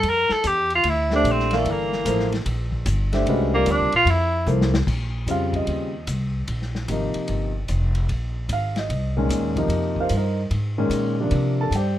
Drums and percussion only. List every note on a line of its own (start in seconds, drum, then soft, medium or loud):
0.03 ride medium
0.29 snare soft
0.44 hi-hat pedal medium
0.44 ride medium
0.70 ride soft
0.84 ride medium
1.10 snare soft
1.25 hi-hat pedal medium
1.25 ride medium
1.39 snare soft
1.51 snare soft
1.51 ride soft
1.66 ride medium
1.92 snare soft
2.06 hi-hat pedal medium
2.06 ride medium
2.20 snare soft
2.32 snare soft
2.32 ride soft
2.46 ride medium
2.72 kick soft
2.86 hi-hat pedal medium
2.86 ride medium
3.13 snare soft
3.13 ride soft
3.27 ride medium
3.66 hi-hat pedal medium
3.66 ride medium
3.92 ride soft
4.07 ride medium
4.47 hi-hat pedal medium
4.61 snare medium
4.74 snare medium
4.87 kick medium
4.87 crash medium
5.28 hi-hat pedal medium
5.28 ride medium
5.53 kick soft
5.53 ride soft
5.67 ride medium
6.07 hi-hat pedal medium
6.07 ride medium
6.48 ride medium
6.62 snare soft
6.75 snare soft
6.88 hi-hat pedal medium
6.88 ride medium
7.14 ride soft
7.28 ride medium
7.68 hi-hat pedal medium
7.68 ride medium
7.95 ride soft
8.09 ride medium
8.49 hi-hat pedal soft
8.49 ride medium
8.76 snare medium
8.76 ride soft
8.90 ride medium
9.30 hi-hat pedal medium
9.30 ride medium
9.56 kick soft
9.56 ride soft
9.70 ride medium
9.96 kick soft
10.09 hi-hat pedal medium
10.09 ride medium
10.51 ride medium
10.91 hi-hat pedal medium
10.91 ride medium
11.31 ride medium
11.72 hi-hat pedal medium
11.72 ride medium